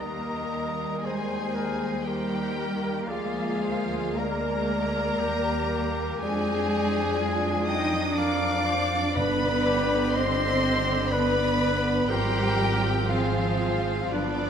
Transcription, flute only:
0, 0, Header, 1, 2, 480
1, 0, Start_track
1, 0, Tempo, 1025641
1, 7, Time_signature, 3, 2, 24, 8
1, 1447, Tempo, 1086957
1, 1927, Tempo, 1032702
1, 2407, Tempo, 990099
1, 4807, Tempo, 972447
1, 5767, Tempo, 1016949
1, 6896, End_track
2, 0, Start_track
2, 0, Title_t, "Flute"
2, 0, Program_c, 0, 73
2, 0, Note_on_c, 0, 75, 44
2, 355, Note_off_c, 0, 75, 0
2, 492, Note_on_c, 0, 72, 46
2, 966, Note_on_c, 0, 70, 50
2, 973, Note_off_c, 0, 72, 0
2, 1450, Note_on_c, 0, 68, 53
2, 1457, Note_off_c, 0, 70, 0
2, 1929, Note_on_c, 0, 74, 71
2, 1936, Note_off_c, 0, 68, 0
2, 2772, Note_off_c, 0, 74, 0
2, 2896, Note_on_c, 0, 74, 61
2, 3605, Note_on_c, 0, 79, 67
2, 3612, Note_off_c, 0, 74, 0
2, 3761, Note_off_c, 0, 79, 0
2, 3841, Note_on_c, 0, 77, 67
2, 4325, Note_on_c, 0, 74, 75
2, 4332, Note_off_c, 0, 77, 0
2, 4799, Note_on_c, 0, 75, 86
2, 4806, Note_off_c, 0, 74, 0
2, 5276, Note_on_c, 0, 74, 80
2, 5283, Note_off_c, 0, 75, 0
2, 5754, Note_off_c, 0, 74, 0
2, 5757, Note_on_c, 0, 70, 87
2, 6132, Note_off_c, 0, 70, 0
2, 6239, Note_on_c, 0, 68, 63
2, 6717, Note_on_c, 0, 65, 63
2, 6724, Note_off_c, 0, 68, 0
2, 6896, Note_off_c, 0, 65, 0
2, 6896, End_track
0, 0, End_of_file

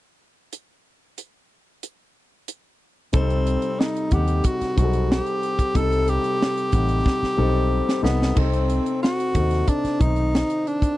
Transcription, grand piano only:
0, 0, Header, 1, 2, 480
1, 0, Start_track
1, 0, Tempo, 653097
1, 387, Time_signature, 4, 2, 24, 8
1, 8066, End_track
2, 0, Start_track
2, 0, Title_t, "Grand piano"
2, 0, Program_c, 0, 0
2, 2299, Note_on_c, 0, 48, 71
2, 2305, Note_on_c, 0, 55, 71
2, 2306, Note_on_c, 0, 63, 68
2, 2307, Note_on_c, 0, 69, 87
2, 2443, Control_c, 0, 64, 127
2, 2795, Note_off_c, 0, 48, 0
2, 2798, Note_off_c, 0, 55, 0
2, 2799, Note_off_c, 0, 63, 0
2, 2800, Note_off_c, 0, 69, 0
2, 3028, Note_on_c, 0, 48, 67
2, 3028, Note_on_c, 0, 55, 56
2, 3032, Note_on_c, 0, 63, 62
2, 3033, Note_on_c, 0, 78, 75
2, 3356, Note_off_c, 0, 48, 0
2, 3356, Note_off_c, 0, 55, 0
2, 3357, Note_off_c, 0, 63, 0
2, 3358, Note_off_c, 0, 78, 0
2, 3503, Note_on_c, 0, 60, 58
2, 3505, Note_on_c, 0, 55, 52
2, 3508, Note_on_c, 0, 63, 59
2, 3511, Note_on_c, 0, 68, 53
2, 3557, Note_off_c, 0, 68, 0
2, 3558, Note_on_c, 0, 69, 66
2, 3997, Note_off_c, 0, 60, 0
2, 3998, Note_off_c, 0, 55, 0
2, 4000, Note_off_c, 0, 63, 0
2, 4025, Note_off_c, 0, 69, 0
2, 4225, Note_on_c, 0, 48, 85
2, 4226, Note_on_c, 0, 55, 73
2, 4229, Note_on_c, 0, 63, 71
2, 4230, Note_on_c, 0, 69, 85
2, 4718, Note_off_c, 0, 48, 0
2, 4719, Note_off_c, 0, 55, 0
2, 4720, Note_off_c, 0, 63, 0
2, 4721, Note_off_c, 0, 69, 0
2, 4944, Note_on_c, 0, 48, 69
2, 4945, Note_on_c, 0, 55, 55
2, 4946, Note_on_c, 0, 63, 52
2, 4950, Note_on_c, 0, 78, 64
2, 5274, Note_off_c, 0, 48, 0
2, 5274, Note_off_c, 0, 55, 0
2, 5275, Note_off_c, 0, 63, 0
2, 5277, Note_off_c, 0, 78, 0
2, 5420, Note_on_c, 0, 60, 83
2, 5421, Note_on_c, 0, 55, 61
2, 5422, Note_on_c, 0, 63, 71
2, 5426, Note_on_c, 0, 69, 79
2, 5752, Note_off_c, 0, 55, 0
2, 5752, Note_off_c, 0, 60, 0
2, 5753, Note_off_c, 0, 63, 0
2, 5755, Note_off_c, 0, 69, 0
2, 5897, Note_on_c, 0, 48, 78
2, 5900, Note_on_c, 0, 55, 65
2, 5904, Note_on_c, 0, 63, 76
2, 5906, Note_on_c, 0, 69, 82
2, 5916, Control_c, 0, 64, 0
2, 6008, Control_c, 0, 64, 127
2, 6094, Note_off_c, 0, 48, 0
2, 6096, Note_off_c, 0, 55, 0
2, 6097, Note_off_c, 0, 63, 0
2, 6098, Note_off_c, 0, 69, 0
2, 6143, Note_on_c, 0, 48, 67
2, 6143, Note_on_c, 0, 60, 70
2, 6147, Note_on_c, 0, 63, 73
2, 6151, Note_on_c, 0, 69, 88
2, 6155, Control_c, 0, 64, 0
2, 6268, Control_c, 0, 64, 127
2, 6637, Note_off_c, 0, 48, 0
2, 6637, Note_off_c, 0, 60, 0
2, 6639, Note_off_c, 0, 63, 0
2, 6641, Note_off_c, 0, 69, 0
2, 6868, Note_on_c, 0, 48, 66
2, 6871, Note_on_c, 0, 60, 56
2, 6873, Note_on_c, 0, 63, 56
2, 6876, Note_on_c, 0, 69, 68
2, 7196, Note_off_c, 0, 48, 0
2, 7197, Note_off_c, 0, 60, 0
2, 7198, Note_off_c, 0, 63, 0
2, 7200, Note_off_c, 0, 69, 0
2, 7344, Note_on_c, 0, 51, 60
2, 7347, Note_on_c, 0, 60, 51
2, 7349, Note_on_c, 0, 63, 53
2, 7352, Note_on_c, 0, 72, 60
2, 7838, Note_off_c, 0, 51, 0
2, 7839, Note_off_c, 0, 60, 0
2, 7840, Note_off_c, 0, 63, 0
2, 7842, Note_off_c, 0, 72, 0
2, 8066, End_track
0, 0, End_of_file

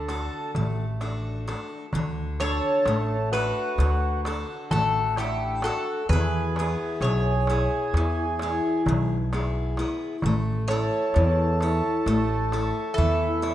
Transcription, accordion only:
0, 0, Header, 1, 2, 480
1, 0, Start_track
1, 0, Key_signature, 2, "major"
1, 0, Tempo, 925926
1, 1009, Time_signature, 9, 3, 24, 8
1, 3405, Tempo, 916031
1, 7061, End_track
2, 0, Start_track
2, 0, Title_t, "Accordion"
2, 0, Program_c, 0, 21
2, 0, Note_on_c, 0, 69, 77
2, 267, Note_off_c, 0, 69, 0
2, 1246, Note_on_c, 0, 69, 92
2, 1707, Note_off_c, 0, 69, 0
2, 1719, Note_on_c, 0, 66, 89
2, 2183, Note_off_c, 0, 66, 0
2, 2440, Note_on_c, 0, 66, 71
2, 2666, Note_off_c, 0, 66, 0
2, 2681, Note_on_c, 0, 64, 70
2, 2906, Note_off_c, 0, 64, 0
2, 2920, Note_on_c, 0, 66, 77
2, 3145, Note_off_c, 0, 66, 0
2, 3162, Note_on_c, 0, 68, 85
2, 3623, Note_off_c, 0, 68, 0
2, 3640, Note_on_c, 0, 68, 93
2, 4585, Note_off_c, 0, 68, 0
2, 5569, Note_on_c, 0, 69, 96
2, 6744, Note_off_c, 0, 69, 0
2, 6749, Note_on_c, 0, 64, 86
2, 7061, Note_off_c, 0, 64, 0
2, 7061, End_track
0, 0, End_of_file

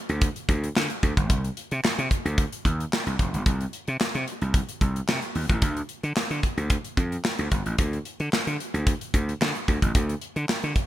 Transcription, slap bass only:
0, 0, Header, 1, 3, 480
1, 0, Start_track
1, 0, Tempo, 540541
1, 1155, Time_signature, 4, 2, 24, 8
1, 9648, End_track
2, 0, Start_track
2, 0, Title_t, "Slap bass"
2, 0, Program_c, 0, 36
2, 82, Note_on_c, 0, 38, 87
2, 246, Note_off_c, 0, 38, 0
2, 434, Note_on_c, 0, 38, 94
2, 598, Note_off_c, 0, 38, 0
2, 677, Note_on_c, 0, 50, 107
2, 763, Note_off_c, 0, 50, 0
2, 916, Note_on_c, 0, 38, 85
2, 1002, Note_off_c, 0, 38, 0
2, 1041, Note_on_c, 0, 31, 79
2, 1153, Note_off_c, 0, 31, 0
2, 1153, Note_on_c, 0, 36, 108
2, 1317, Note_off_c, 0, 36, 0
2, 1524, Note_on_c, 0, 48, 97
2, 1601, Note_off_c, 0, 48, 0
2, 1763, Note_on_c, 0, 48, 99
2, 1839, Note_off_c, 0, 48, 0
2, 2001, Note_on_c, 0, 38, 85
2, 2165, Note_off_c, 0, 38, 0
2, 2354, Note_on_c, 0, 39, 97
2, 2518, Note_off_c, 0, 39, 0
2, 2722, Note_on_c, 0, 36, 85
2, 2799, Note_off_c, 0, 36, 0
2, 2836, Note_on_c, 0, 29, 72
2, 2922, Note_off_c, 0, 29, 0
2, 2965, Note_on_c, 0, 31, 86
2, 3041, Note_off_c, 0, 31, 0
2, 3074, Note_on_c, 0, 36, 99
2, 3238, Note_off_c, 0, 36, 0
2, 3444, Note_on_c, 0, 48, 96
2, 3521, Note_off_c, 0, 48, 0
2, 3684, Note_on_c, 0, 48, 99
2, 3760, Note_off_c, 0, 48, 0
2, 3922, Note_on_c, 0, 36, 99
2, 4086, Note_off_c, 0, 36, 0
2, 4273, Note_on_c, 0, 36, 89
2, 4437, Note_off_c, 0, 36, 0
2, 4517, Note_on_c, 0, 48, 94
2, 4603, Note_off_c, 0, 48, 0
2, 4753, Note_on_c, 0, 39, 79
2, 4841, Note_off_c, 0, 39, 0
2, 4881, Note_on_c, 0, 33, 88
2, 4992, Note_off_c, 0, 33, 0
2, 4992, Note_on_c, 0, 38, 103
2, 5157, Note_off_c, 0, 38, 0
2, 5359, Note_on_c, 0, 50, 97
2, 5437, Note_off_c, 0, 50, 0
2, 5599, Note_on_c, 0, 50, 97
2, 5677, Note_off_c, 0, 50, 0
2, 5837, Note_on_c, 0, 38, 92
2, 6003, Note_off_c, 0, 38, 0
2, 6192, Note_on_c, 0, 41, 92
2, 6357, Note_off_c, 0, 41, 0
2, 6561, Note_on_c, 0, 38, 95
2, 6639, Note_off_c, 0, 38, 0
2, 6674, Note_on_c, 0, 31, 74
2, 6761, Note_off_c, 0, 31, 0
2, 6800, Note_on_c, 0, 33, 78
2, 6878, Note_off_c, 0, 33, 0
2, 6915, Note_on_c, 0, 38, 99
2, 7079, Note_off_c, 0, 38, 0
2, 7282, Note_on_c, 0, 50, 100
2, 7359, Note_off_c, 0, 50, 0
2, 7521, Note_on_c, 0, 50, 92
2, 7599, Note_off_c, 0, 50, 0
2, 7760, Note_on_c, 0, 38, 85
2, 7925, Note_off_c, 0, 38, 0
2, 8116, Note_on_c, 0, 38, 94
2, 8279, Note_off_c, 0, 38, 0
2, 8354, Note_on_c, 0, 50, 107
2, 8441, Note_off_c, 0, 50, 0
2, 8598, Note_on_c, 0, 38, 81
2, 8684, Note_off_c, 0, 38, 0
2, 8724, Note_on_c, 0, 33, 90
2, 8800, Note_off_c, 0, 33, 0
2, 8835, Note_on_c, 0, 38, 109
2, 8999, Note_off_c, 0, 38, 0
2, 9200, Note_on_c, 0, 50, 93
2, 9278, Note_off_c, 0, 50, 0
2, 9444, Note_on_c, 0, 50, 95
2, 9521, Note_off_c, 0, 50, 0
2, 9648, End_track
3, 0, Start_track
3, 0, Title_t, "Muted slap bass strokes"
3, 1635, Note_on_c, 9, 29, 46
3, 1724, Note_off_c, 9, 29, 0
3, 3557, Note_on_c, 9, 29, 48
3, 3646, Note_off_c, 9, 29, 0
3, 5474, Note_on_c, 9, 29, 52
3, 5563, Note_off_c, 9, 29, 0
3, 7396, Note_on_c, 9, 29, 48
3, 7485, Note_off_c, 9, 29, 0
3, 9317, Note_on_c, 9, 29, 49
3, 9406, Note_off_c, 9, 29, 0
3, 9648, End_track
0, 0, End_of_file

